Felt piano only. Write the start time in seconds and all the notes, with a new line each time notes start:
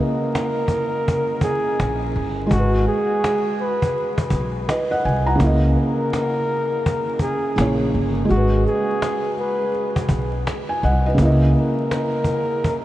Already playing: C#3 A#3 E4 B4 D#5
2.47 G#3 F#4
2.54 G#4 B4
4.68 B4 D#5
4.91 D#5 F#5
5.05 G#5
5.26 F#5 A#5
5.35 C#3 A#3
5.43 E4 D#5
7.56 C#3 A#3 E4
7.61 C#5
8.25 G#3 F#4
8.32 G#4 B4
10.69 G#5
10.84 D#5 F#5
11.06 B4 D#5
11.14 C#3 A#3
11.22 E4 D#5